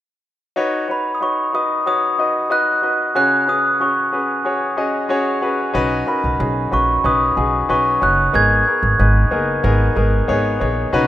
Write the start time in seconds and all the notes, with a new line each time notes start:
0.56 D#4 F#4 B4 C#5
0.88 D#4 F#4 B4 C#5 B5
1.15 D#6
1.21 D#4 F#4 B4 C#5 C#6
1.53 D#4 F#4 B4 D#5 D#6
1.86 D#4 F#4 B4 C#5 D#6
2.19 D#4 F#4 B4 D#5
2.50 D#4 F#4 B4 D#5 F#6
2.82 D#4 F#4 B4 D#5
3.15 C#3 C#4 F#4 G#4 C#5 F#6
3.47 C#4 F#4 G#4 B4 D#6
3.80 C#4 F#4 G#4 C#5 C#6
4.12 C#4 F#4 G#4 B4
4.45 C#4 F#4 G#4 C#5
4.77 C#4 F#4 G#4 D#5
5.09 C#4 F#4 G#4 C#5
5.42 C#4 F#4 G#4 B4
5.74 B1 C#4 D#4 F#4 B4
6.07 C#4 D#4 F#4 A#4 B5
6.24 B1
6.39 B1 C#4 D#4 F#4 G#4
6.71 A#1 C#4 D#4 F#4 B4 C#6
7.04 B1 C#4 D#4 F#4 B4 D#6
7.36 B1 C#4 D#4 F#4 G#4
7.69 B1 C#4 D#4 F#4 B4 C#6
8.01 F#1 C#4 D#4 F#4 C#5 F#6
8.33 G#1 B3 D#4 G#4 A#4 G#6
8.66 B3 D#4 G#4 A#4
8.83 G#1
8.99 G#1 B3 D#4 G#4 B4
9.31 F#1 B3 D#4 G#4 A#4
9.63 G#1 B3 D#4 G#4 A#4
9.96 G#1 B3 D#4 G#4 A#4
10.28 G#1 B3 D#4 G#4 C#5
10.60 A#1 B3 D#4 G#4 C#5
10.93 B1 C#3 F#3 B3 C#4 D#4 F#4 B4